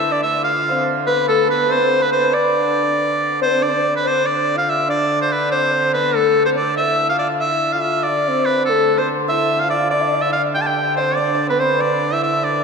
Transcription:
0.00 3.61 D3 medium
0.00 1.28 A4 medium
0.00 0.69 C5 medium
0.00 0.35 D5 medium
0.00 0.13 E5 loud
0.00 0.48 E5 medium
0.12 0.24 D5 medium
0.12 0.22 D5 medium
0.23 0.43 E5 medium
0.23 0.42 E5 medium
0.42 2.64 F5 medium
0.42 0.88 F5 loud
0.42 0.68 F5 medium
0.69 1.14 C5 medium
0.69 0.90 C5 medium
1.07 1.26 B4 medium
1.07 1.29 B4 medium
1.07 1.48 B4 medium
1.28 1.47 A4 medium
1.28 1.48 A4 medium
1.28 4.22 A4 medium
1.48 1.71 B4 medium
1.48 1.74 B4 medium
1.48 1.73 B4 medium
1.68 2.07 C5 medium
1.68 1.77 C5 medium
1.68 2.04 C5 loud
1.76 1.84 B4 medium
1.83 2.04 C5 medium
2.01 4.74 B4 medium
2.01 2.12 B4 medium
2.01 2.15 B4 medium
2.12 2.36 C5 medium
2.12 2.20 C5 medium
2.18 2.24 B4 medium
2.23 2.33 C5 medium
2.32 4.78 D5 medium
2.32 3.36 D5 medium
2.32 3.40 D5 medium
3.41 3.51 B4 medium
3.41 3.46 C5 medium
3.41 3.65 C5 medium
3.50 3.63 C5 medium
3.61 8.66 D3 medium
3.61 3.70 D5 medium
3.61 3.94 D5 medium
3.68 3.75 C5 medium
3.73 4.05 D5 medium
3.96 4.09 B4 medium
4.04 4.25 C5 medium
4.04 4.28 C5 medium
4.23 4.57 D5 medium
4.55 4.87 F5 medium
4.55 4.71 F5 loud
4.70 4.89 E5 medium
4.88 5.54 D5 medium
4.88 5.18 D5 medium
5.22 5.34 C5 medium
5.32 5.51 B4 medium
5.51 5.90 C5 medium
5.51 5.71 C5 medium
5.72 5.91 C5 medium
5.94 6.15 B4 medium
5.94 6.17 B4 medium
6.14 6.48 A4 medium
6.14 6.45 A4 medium
6.46 6.50 C5 medium
6.46 6.57 C5 medium
6.56 6.77 D5 medium
6.56 6.76 D5 medium
6.77 7.06 E5 loud
6.77 7.11 E5 medium
7.10 7.18 F5 medium
7.10 7.34 F5 loud
7.19 7.28 D5 medium
7.34 7.42 F5 medium
7.40 7.74 E5 medium
7.40 7.72 E5 medium
7.73 7.83 F5 medium
7.73 8.08 F5 medium
7.82 8.04 E5 medium
8.03 8.47 D5 medium
8.03 8.29 D5 medium
8.28 8.70 C5 medium
8.46 8.65 B4 medium
8.65 12.64 D3 medium
8.65 8.99 A4 medium
8.65 11.60 A4 medium
8.65 9.01 A4 medium
8.98 9.08 C5 medium
8.98 10.96 C5 medium
8.98 9.09 C5 medium
9.28 9.66 E5 medium
9.28 9.61 E5 loud
9.28 9.65 E5 medium
9.57 11.81 F5 medium
9.57 9.69 F5 medium
9.57 10.54 G5 medium
9.63 9.70 F5 medium
9.69 9.90 D5 medium
9.69 9.74 E5 medium
9.69 9.92 F5 medium
9.90 10.23 D5 medium
9.90 11.17 D5 medium
9.90 10.02 D5 medium
10.00 10.09 E5 medium
10.07 10.15 D5 medium
10.14 10.24 E5 medium
10.21 10.30 D5 medium
10.21 10.32 E5 medium
10.29 10.39 E5 medium
10.29 10.42 F5 medium
10.37 10.58 D5 medium
10.55 10.63 G5 loud
10.55 10.66 G5 medium
10.61 10.68 A5 medium
10.67 10.96 G5 medium
10.67 12.64 G5 medium
10.67 10.99 G5 medium
10.96 11.17 C5 medium
10.96 11.47 C5 medium
10.96 11.20 C5 medium
11.16 11.48 D5 loud
11.16 11.27 D5 medium
11.16 11.50 D5 medium
11.27 11.34 D5 medium
11.35 11.80 D5 medium
11.47 11.59 B4 medium
11.47 11.61 B4 medium
11.47 11.67 B4 medium
11.47 11.56 C5 medium
11.57 11.80 C5 medium
11.57 11.83 C5 medium
11.57 12.64 C5 medium
11.78 12.12 D5 medium
11.78 12.43 D5 medium
11.78 12.15 D5 medium
12.11 12.21 E5 medium
12.11 12.23 E5 medium
12.22 12.64 E5 medium
12.22 12.31 E5 medium
12.22 12.45 E5 medium
12.43 12.64 D5 medium

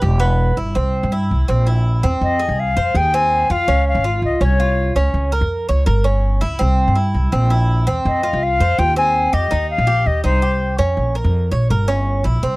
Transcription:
0.02 0.54 E1 loud
0.02 0.20 G4 medium
0.20 0.55 B3 medium
0.57 0.74 G1 medium
0.57 0.75 E4 medium
0.75 1.02 C2 medium
0.75 1.11 C4 medium
1.03 1.29 G2 loud
1.12 1.47 E4 medium
1.31 1.48 C2 medium
1.48 2.01 A#1 loud
1.48 1.66 C4 medium
1.67 2.02 E4 medium
2.03 2.21 E2 medium
2.03 2.39 C4 medium
2.21 2.48 F2 medium
2.21 2.61 D#5 medium
2.39 2.75 G#4 medium
2.49 2.75 C2 medium
2.60 2.98 F5 medium
2.77 2.94 F2 medium
2.77 2.94 C5 medium
2.95 3.47 D#2 loud
2.95 3.13 G#4 medium
2.95 3.16 G5 loud
3.14 3.49 C4 medium
3.14 3.53 G#5 loud
3.50 3.67 F2 medium
3.50 3.68 F4 medium
3.50 3.87 F5 loud
3.68 3.94 C#2 medium
3.68 4.03 C#4 medium
3.88 4.21 F5 medium
3.95 4.21 G#1 medium
4.04 4.40 F4 medium
4.22 4.40 C#2 medium
4.22 4.41 D#5 medium
4.41 4.93 C2 loud
4.41 4.59 C#4 medium
4.41 4.93 C#5 medium
4.60 4.95 F4 medium
4.95 5.13 C#2 medium
4.95 5.31 C#4 medium
5.14 5.40 C#2 medium
5.32 5.68 A#4 medium
5.41 5.67 F2 medium
5.69 5.86 C#2 medium
5.69 5.86 C#5 medium
5.86 6.39 G1 loud
5.86 6.04 A#4 medium
6.04 6.40 C#4 medium
6.41 6.59 C#2 medium
6.41 6.59 E4 medium
6.59 6.86 C2 medium
6.59 6.95 C4 medium
6.88 7.13 G2 medium
6.96 7.31 E4 medium
7.14 7.32 C2 medium
7.32 7.85 A#1 loud
7.32 7.50 C4 medium
7.50 7.86 E4 medium
7.87 8.05 E2 medium
7.87 8.22 C4 medium
8.05 8.31 F2 loud
8.05 8.45 D#5 medium
8.23 8.59 F4 medium
8.33 8.59 C2 loud
8.43 8.80 F5 loud
8.60 8.78 F2 medium
8.60 8.78 C5 medium
8.79 9.30 D#2 loud
8.79 8.96 F4 medium
8.79 8.97 G5 loud
8.96 9.32 C4 medium
8.96 9.35 G#5 loud
9.33 9.50 F2 medium
9.33 9.51 G4 medium
9.33 9.70 D#5 loud
9.51 9.78 D#2 medium
9.51 9.86 D#4 medium
9.70 10.08 F5 loud
9.78 10.05 A#1 loud
9.87 10.23 G4 medium
10.06 10.23 D#2 medium
10.06 10.24 D#5 medium
10.24 10.76 C2 loud
10.24 10.42 D#4 medium
10.24 10.75 C5 medium
10.42 10.78 G4 medium
10.79 10.96 F2 medium
10.79 11.14 C#4 medium
10.97 11.23 A#1 medium
11.15 11.51 A#4 medium
11.24 11.50 F2 loud
11.52 11.69 A#1 medium
11.52 11.69 C#5 medium
11.70 12.22 G1 loud
11.70 11.88 A#4 medium
11.88 12.24 C#4 medium
12.24 12.42 A#1 medium
12.24 12.42 E4 medium
12.43 12.56 C2 medium
12.43 12.56 C4 medium

